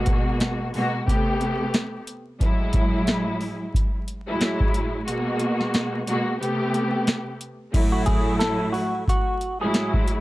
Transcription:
0.00 0.67 B2 loud
0.00 0.67 G#3 medium
0.00 0.67 A#3 medium
0.00 0.67 F#4 loud
0.06 kick loud
0.06 closed hi-hat medium
0.40 snare loud
0.40 snare medium
0.40 closed hi-hat medium
0.74 1.05 B2 loud
0.74 1.05 G#3 medium
0.74 1.05 A#3 loud
0.74 1.06 F#4 loud
0.74 open hi-hat medium
1.06 2.00 C3 loud
1.06 2.01 A3 medium
1.06 2.01 B3 medium
1.06 2.01 G4 loud
1.06 kick medium
1.06 closed hi-hat medium
1.41 closed hi-hat medium
1.74 snare loud
1.74 snare medium
1.74 closed hi-hat medium
2.07 closed hi-hat medium
2.40 3.96 A2 loud
2.40 3.96 F#3 loud
2.40 3.96 G#3 loud
2.40 3.97 E4 loud
2.40 kick loud
2.40 closed hi-hat loud
2.73 kick loud
2.73 closed hi-hat medium
3.07 snare loud
3.07 snare medium
3.07 closed hi-hat medium
3.41 open hi-hat medium
3.74 kick medium
3.74 closed hi-hat medium
4.08 closed hi-hat medium
4.27 5.02 A2 medium
4.27 5.02 F#3 medium
4.27 5.02 G#3 medium
4.27 5.03 E4 loud
4.41 snare loud
4.41 snare medium
4.41 closed hi-hat medium
4.60 kick medium
4.74 closed hi-hat medium
5.06 6.00 B2 loud
5.06 6.00 G#3 medium
5.06 6.00 A#3 medium
5.06 6.01 F#4 loud
5.06 closed hi-hat loud
5.40 closed hi-hat medium
5.61 snare soft
5.74 snare loud
5.74 snare medium
5.74 closed hi-hat medium
6.07 6.38 B2 loud
6.07 6.38 G#3 medium
6.07 6.39 A#3 loud
6.07 6.39 F#4 loud
6.07 closed hi-hat medium
6.40 7.34 C3 medium
6.40 7.34 A3 medium
6.40 7.34 B3 medium
6.40 7.34 G4 loud
6.40 closed hi-hat medium
6.74 closed hi-hat medium
7.07 snare loud
7.07 snare medium
7.07 closed hi-hat medium
7.41 closed hi-hat medium
7.73 9.29 A2 loud
7.73 9.30 F#3 loud
7.73 9.30 A3 loud
7.73 9.30 E4 loud
7.73 kick loud
7.73 closed hi-hat loud
7.73 crash loud
7.92 8.05 F#4 medium
8.06 8.37 G#4 medium
8.06 kick loud
8.06 closed hi-hat medium
8.39 8.70 A4 medium
8.39 snare loud
8.39 snare medium
8.39 closed hi-hat medium
8.73 9.03 F#4 medium
8.73 open hi-hat medium
9.08 9.58 F#4 medium
9.08 kick medium
9.08 closed hi-hat medium
9.41 closed hi-hat medium
9.61 10.21 A2 loud
9.61 10.21 F#3 medium
9.61 10.21 G#3 medium
9.61 10.21 E4 loud
9.61 9.91 G#4 medium
9.74 snare loud
9.74 closed hi-hat loud
9.94 kick medium
10.08 closed hi-hat medium

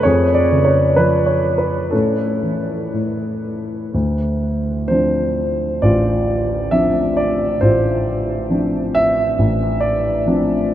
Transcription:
0.03 1.89 F2 medium
0.03 1.89 G#4 medium
0.03 0.36 C#5 medium
0.34 0.67 D5 medium
0.52 1.89 C#3 soft
0.64 0.97 C#5 medium
0.96 1.90 F3 soft
0.96 1.29 B4 medium
1.26 1.60 C#5 medium
1.58 1.92 B4 medium
1.91 2.92 A2 medium
1.91 3.90 C#4 soft
1.91 3.40 A4 medium
2.42 3.90 E3 soft
2.93 3.91 A2 soft
3.94 7.57 D2 medium
4.88 5.64 F3 soft
4.88 5.64 C4 soft
4.88 5.64 D4 soft
4.88 5.84 C5 medium
5.82 7.60 A1 medium
5.82 7.58 F4 medium
5.82 6.74 D5 medium
6.71 7.44 F3 soft
6.71 7.44 C4 soft
6.71 7.44 D4 soft
6.71 7.17 E5 medium
7.17 7.63 D5 medium
7.61 9.37 A1 medium
7.61 9.34 F4 medium
7.61 8.98 C5 medium
8.50 9.20 F3 soft
8.50 9.20 C4 soft
8.50 9.21 D4 soft
8.95 9.85 E5 loud
9.39 10.74 A1 medium
9.80 10.67 D5 medium
10.26 10.74 F3 soft
10.26 10.74 C4 soft
10.26 10.74 D4 medium

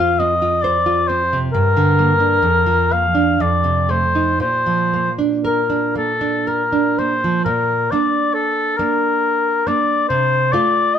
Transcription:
0.00 1.49 F2 soft
0.00 0.33 F4 soft
0.00 0.12 C5 soft
0.00 0.21 F5 medium
0.19 0.54 C4 soft
0.19 0.64 D#5 medium
0.42 0.77 F4 soft
0.62 0.99 C5 soft
0.62 1.09 D5 medium
0.86 1.22 F4 soft
1.08 1.45 C4 soft
1.08 1.40 C5 medium
1.33 1.54 C3 soft
1.53 2.42 G2 soft
1.53 2.95 A#4 medium
1.77 2.12 D3 soft
1.99 2.35 A#3 soft
2.20 2.44 D4 soft
2.42 3.37 F2 soft
2.66 3.06 F3 soft
2.91 3.30 A#3 soft
2.91 3.43 F5 medium
3.15 3.40 D4 soft
3.40 4.38 F2 soft
3.40 3.92 D5 soft
3.64 4.04 C3 soft
3.89 4.30 A3 soft
3.89 4.41 C5 soft
4.15 4.41 D#4 soft
4.40 7.41 A#2 soft
4.40 5.12 C5 medium
4.66 5.08 F3 soft
4.94 5.35 A#3 soft
5.19 5.60 D4 soft
5.45 5.86 A#4 soft
5.45 5.93 A#4 soft
5.70 6.11 D4 soft
5.95 6.36 A#3 soft
5.95 6.50 A4 soft
6.21 6.62 D4 soft
6.47 6.88 A#4 soft
6.47 7.00 A#4 soft
6.72 7.13 D4 soft
6.99 7.37 A#3 soft
6.99 7.45 C5 soft
7.24 7.46 F3 soft
7.45 7.89 A#2 soft
7.45 7.93 A#4 soft
7.91 8.75 A#3 soft
7.91 8.75 D4 soft
7.91 8.36 D5 soft
8.34 8.79 A4 soft
8.78 9.63 A#3 soft
8.78 9.63 D4 soft
8.78 9.69 A#4 soft
9.67 10.06 A#3 soft
9.67 10.06 D4 soft
9.67 10.08 D5 medium
10.09 10.52 C3 soft
10.09 10.54 C5 medium
10.53 10.99 A3 soft
10.53 10.99 F4 soft
10.53 10.96 D5 medium
10.95 10.99 D#5 medium

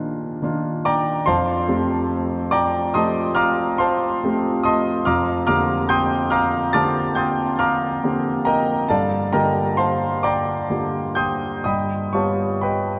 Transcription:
0.00 0.39 D#3 soft
0.00 0.39 A#3 soft
0.00 0.39 D4 soft
0.00 0.40 F4 soft
0.00 0.40 G4 medium
0.00 0.40 C5 medium
0.00 0.40 D#5 medium
0.00 0.43 G5 medium
0.42 1.22 D#3 soft
0.42 1.22 A#3 soft
0.42 1.22 D4 soft
0.42 1.23 F4 soft
0.85 1.24 D5 medium
0.85 1.24 G5 medium
0.85 1.24 A#5 medium
0.85 1.26 D6 medium
1.26 1.67 F2 medium
1.26 2.49 C5 medium
1.26 2.49 F5 medium
1.26 2.49 A5 medium
1.26 2.52 C6 medium
1.68 2.91 F3 soft
1.68 2.91 A3 soft
1.68 2.91 C4 soft
1.68 2.91 G4 soft
2.51 2.91 D5 medium
2.51 2.92 G5 medium
2.51 2.91 A#5 medium
2.51 2.94 D6 medium
2.94 4.18 F3 soft
2.94 4.19 A3 soft
2.94 4.19 C4 soft
2.94 4.19 G4 soft
2.94 3.34 D#5 medium
2.94 3.34 A5 medium
2.94 3.34 C6 medium
2.94 3.36 D#6 medium
3.35 3.76 F5 medium
3.35 3.76 A#5 medium
3.35 3.76 D6 medium
3.35 3.78 F6 medium
3.78 4.61 C5 medium
3.78 4.61 F5 medium
3.78 4.61 A5 medium
3.78 4.64 C6 medium
4.24 5.03 F3 soft
4.24 5.03 A3 soft
4.24 5.03 C4 soft
4.24 5.03 G4 soft
4.63 5.04 D#5 medium
4.63 5.03 A5 medium
4.63 5.04 C6 medium
4.63 5.06 D#6 medium
5.05 5.47 F2 medium
5.05 5.45 F5 medium
5.05 5.45 A#5 medium
5.05 5.45 D6 medium
5.05 5.45 F6 medium
5.47 6.71 D3 soft
5.47 6.71 A#3 soft
5.47 6.71 C4 soft
5.47 6.72 G4 soft
5.47 5.87 F5 medium
5.47 5.87 A#5 medium
5.47 5.87 D6 medium
5.47 5.89 F6 medium
5.89 6.30 G5 medium
5.89 6.29 C6 medium
5.89 6.30 D#6 medium
5.89 6.32 G6 medium
6.30 6.72 F5 medium
6.30 6.72 A#5 medium
6.30 6.71 D6 medium
6.30 6.73 F6 medium
6.73 7.99 D3 soft
6.73 7.99 A#3 soft
6.73 7.99 C4 soft
6.73 7.99 G4 soft
6.73 7.14 A5 medium
6.73 7.14 D6 medium
6.73 7.14 F6 medium
6.73 7.16 A6 medium
7.15 7.57 G5 medium
7.15 7.57 C6 medium
7.15 7.57 D#6 medium
7.15 7.59 G6 medium
7.59 8.42 F5 medium
7.59 8.42 A#5 medium
7.59 8.42 D6 medium
7.59 8.46 F6 medium
8.03 8.86 D3 soft
8.03 8.86 A#3 soft
8.03 8.86 C4 soft
8.03 8.87 G4 soft
8.45 8.87 A#4 medium
8.45 8.87 D#5 medium
8.45 8.87 G5 medium
8.45 8.89 A#5 medium
8.88 9.33 G2 soft
8.88 9.31 A4 medium
8.88 9.31 D5 medium
8.88 9.31 F5 medium
8.88 9.33 A5 medium
9.33 10.66 D3 soft
9.33 10.66 A#3 soft
9.33 10.67 F4 soft
9.33 10.67 G4 soft
9.33 9.76 A#4 medium
9.33 9.76 D#5 medium
9.33 9.75 G5 medium
9.33 9.78 A#5 medium
9.77 10.21 C5 medium
9.77 10.21 F5 medium
9.77 10.21 A5 medium
9.77 10.24 C6 medium
10.23 11.13 D5 medium
10.23 11.13 G5 medium
10.23 11.13 A#5 soft
10.23 11.16 D6 medium
10.70 11.60 D3 soft
10.70 11.61 A#3 soft
10.70 11.61 F4 soft
10.70 11.61 G4 soft
11.15 11.61 G5 medium
11.15 11.61 C6 medium
11.15 11.61 D#6 medium
11.15 11.64 G6 medium
11.64 12.12 G2 soft
11.64 12.10 D#5 soft
11.64 12.10 G5 soft
11.64 12.10 B5 soft
11.64 12.13 D#6 medium
12.13 12.99 G3 soft
12.13 12.99 B3 soft
12.13 12.99 F4 soft
12.13 12.99 G4 soft
12.13 12.60 C#5 soft
12.13 12.59 F5 soft
12.13 12.60 A5 soft
12.13 12.62 C#6 medium
12.61 12.99 B4 soft
12.61 12.99 D#5 soft
12.61 12.99 G5 soft
12.61 12.99 B5 medium

